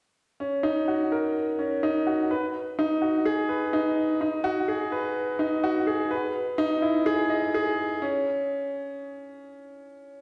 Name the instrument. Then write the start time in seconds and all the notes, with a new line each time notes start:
grand piano
0.40 C#4
0.63 D#4
0.88 F#4
1.12 A#4
1.59 C#4
1.83 D#4
2.07 F#4
2.31 B4
2.79 D#4
3.02 F#4
3.25 G#4
3.49 B4
3.73 D#4
4.21 D#4
4.44 F#4
4.68 G#4
4.92 B4
5.39 D#4
5.64 F#4
5.87 G#4
6.11 B4
6.58 D#4
6.82 E4
7.06 G#4
7.30 D#5
7.54 G#4
8.02 C#4